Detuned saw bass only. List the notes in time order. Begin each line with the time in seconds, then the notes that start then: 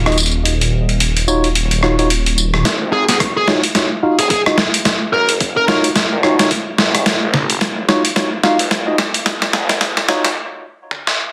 Already playing: D#1
2.65 D#1
2.81 G#1
3.09 F#1
3.48 G#1
4.19 D#1
5.13 F#1
5.41 F#1
6.12 F#1
6.78 F#1
7.06 D#1
7.22 G#1
7.50 F#1
7.89 G#1
8.60 D#1
9.54 F#1
9.81 F#1
10.25 C#2